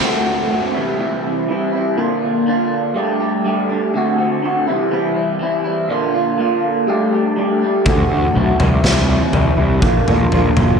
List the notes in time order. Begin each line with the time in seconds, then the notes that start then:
0.01 D3 A3 C4 F#4
0.25 A3 C4 F#4
0.50 D3 A3 C4 F#4
0.74 C3 E3 G3 C4 E4
0.98 C3 E3 G3 C4 E4
1.24 G3 C4 E4
1.48 E3 G3 C4 E4
1.73 G3 C4 E4
1.96 A#2 D3 A#3 D4 F4
2.21 A#3 D4 F4
2.46 D3 A#3 D4 F4
2.94 G3 A3 D4 G4
3.20 A3 D4 G4
3.44 G3 A3 D4 G4
3.69 A3 D4 G4
3.94 D3 A3 C4 F#4
4.18 A3 C4 F#4
4.42 D3 A3 C4 F#4
4.67 C3 E3 G3 C4 E4
4.91 C3 E3 G3 C4 E4
5.14 G3 C4 E4
5.39 E3 G3 C4 E4
5.64 G3 C4 E4
5.88 A#2 D3 A#3 D4 F4
6.14 A#3 D4 F4
6.38 D3 A#3 D4 F4
6.87 G3 A3 D4 G4
7.12 A3 D4 G4
7.36 G3 A3 D4 G4
7.61 A3 D4 G4
7.86 D2 D3 A3 C4 F#4, kick, floor tom
8.09 D2 C4 F#4
8.14 A3
8.35 B1 D3 A3 C4 F#4
8.59 C2 C3 E3 G3 C4 E4, floor tom
8.83 C2 C3 E3 G3 C4 E4, snare, floor tom
9.09 G3 C4 E4
9.33 C2 E3 G3 C4 E4, floor tom
9.57 C2 G3 C4 E4
9.80 A#1 A#2 D3 A#3 D4 F4, kick
10.06 A#1 A#3 D4 F4, floor tom
10.31 A#1 D3 A#3 D4 F4, floor tom
10.57 F#1, floor tom, mid tom